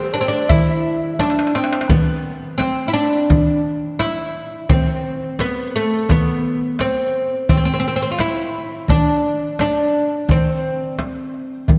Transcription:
Already playing: oud C4, harp G4 A4 C5
0.14 oud D4, harp D5, darbuka ka
0.21 oud C4
0.28 oud D4
0.33 darbuka ka
0.49 oud E4, harp E5, frame drum, darbuka dum
0.68 darbuka ka
1.14 harp E5
1.19 oud D4, harp D5, darbuka tek, frame drum
1.30 darbuka ka
1.39 darbuka tek
1.47 darbuka ka
1.55 oud C4, darbuka tek
1.64 darbuka ka
1.72 darbuka tek
1.81 darbuka ka
1.89 oud B3, darbuka dum, frame drum
2.58 oud C4, darbuka tek, frame drum
2.88 oud E4
2.93 oud D4
3.30 darbuka dum, frame drum
3.48 darbuka ka
3.99 oud E4, darbuka tek, frame drum
4.69 oud C4, frame drum, darbuka dum
5.39 oud B3, darbuka tek, frame drum
5.76 oud A3
5.92 darbuka ka
6.09 oud B3, darbuka dum, frame drum
6.27 darbuka ka
6.79 oud C4, darbuka tek, frame drum
7.49 oud C4, frame drum, darbuka dum
7.57 oud C4
7.65 oud C4
7.74 oud C4
7.80 oud C4
7.88 oud C4
7.96 oud C4
8.02 oud C4
8.12 oud F4
8.18 oud E4, darbuka tek, frame drum
8.72 darbuka ka
8.88 oud D4, darbuka dum, frame drum
9.06 darbuka ka
9.59 oud D4, darbuka tek, frame drum
10.29 oud C4, darbuka dum, frame drum
10.47 darbuka ka
10.64 darbuka ka
10.99 darbuka tek, frame drum
11.34 darbuka ka
11.68 darbuka dum, frame drum

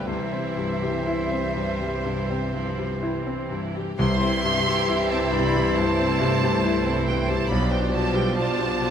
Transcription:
Already playing: grand piano G2 D3 A3 B3, bassoon F3
0.07 grand piano C2, double bass section C2, cello section C3, bassoon E3, french horn section E3, viola section G3 E4, violin section G3 C5 E5, oboe C5, flute E5
0.33 grand piano C4, violin section C4
0.57 grand piano G2, violin section E4
0.82 grand piano G3, violin section G4
1.07 viola section G3, violin section E4, grand piano E4
1.31 grand piano C4, violin section C4
1.56 grand piano G2, violin section G3
1.81 grand piano G3, violin section C4
2.05 grand piano G2, violin section E4
2.30 grand piano C4, violin section G4
2.53 grand piano G2, viola section F3, violin section E4
2.78 grand piano G3, violin section C4
3.02 viola section E3, violin section G3, grand piano E4
3.26 grand piano C4, violin section C4
3.51 grand piano G2, violin section E4
3.76 grand piano G3, violin section G4
3.98 double bass section C2, grand piano C2, cello section C3, timpani C3, bassoon E3, french horn section G3 E4, viola section G3 E4, violin section G4 C5 C6, oboe C5, flute E5
4.22 grand piano C4
4.44 grand piano G2, violin section E5
4.67 grand piano G3
4.88 viola section E3, grand piano E4
5.09 grand piano C4, flute C5, violin section A5
5.31 grand piano G2, flute D5, violin section B5
5.56 grand piano G3
5.75 grand piano G2, viola section A3, violin section E4 C5 A5, flute C5
5.99 grand piano C4
6.19 grand piano G2
6.42 grand piano G3
6.63 violin section E4, grand piano E4
6.86 grand piano C4
7.06 grand piano G2, flute B4, violin section G5
7.26 grand piano G3, flute C5, violin section A5
7.48 double bass section B1, grand piano B1, cello section B2, bassoon F3, viola section G3 D4, french horn section G3 F4, violin section G4 B5, flute D5, oboe D5
7.70 grand piano D4, flute B4, violin section G5
7.92 grand piano B2, flute C5, violin section A5
8.13 grand piano G3, flute B4, violin section G5
8.34 viola section D4, violin section F4 A5, grand piano F4, flute C5
8.58 grand piano D4
8.79 grand piano B2, violin section F4

